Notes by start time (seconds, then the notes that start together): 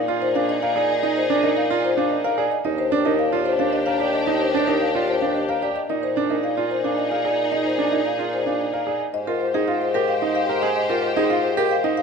Already playing: A#2 D#4 G#4 F5
0.08 F4 D5
0.22 C5
0.35 D4 F5
0.49 D#5
0.62 A#4 F5
0.76 G#4 D5
0.90 D#5
1.03 D#4 D#5
1.17 C5
1.30 D4 D5
1.43 D#4 A#4
1.57 F5
1.70 F4 D5
1.85 C5
1.97 D4 F5
2.11 D#5
2.24 A#4 F5
2.38 G#4 D5
2.52 D#5
2.65 D#2 D4 D#4 G4 D#5
2.78 C5
2.92 D4 D5
3.05 D#4 A#4
3.19 F5
3.32 F4 D5
3.45 C5
3.59 D4 F5
3.73 D#5
3.86 A#4 F5
4.00 G4 D5
4.13 D#5
4.27 D#4 D#5
4.40 C5
4.54 D4 D5
4.68 D#4 A#4
4.81 F5
4.94 F4 D5
5.08 C5
5.21 D4 F5
5.35 D#5
5.49 A#4 F5
5.62 G4 D5
5.76 D#5
5.89 A#2 D#4 G#4 D#5
6.03 C5
6.16 D4 D5
6.30 D#4 A#4
6.44 F5
6.57 F4 D5
6.71 C5
6.84 D4 F5
6.98 D#5
7.11 A#4 F5
7.25 G#4 D5
7.39 D#5
7.52 D#4 D#5
7.66 C5
7.78 D4 D5
7.92 D#4 A#4
8.06 F5
8.19 F4 D5
8.33 C5
8.46 D4 F5
8.61 D#5
8.73 A#4 F5
8.87 G#4 D5
9.00 D#5
9.14 G#2 G4 C5 D#5
9.27 F4 A#4
9.41 C5
9.54 D#4 G#4
9.68 F4 F5
9.82 C5
9.94 G4 A#4
10.08 F5
10.22 D#4 D#5
10.35 F5
10.49 A#4 C5
10.62 G#4 D#5
10.76 D#5
10.89 F4 A#4
11.03 C5
11.16 D#4 G#4
11.30 F4 F5
11.43 C5
11.57 G4 A#4
11.71 F5
11.84 D#4 D#5
11.97 F5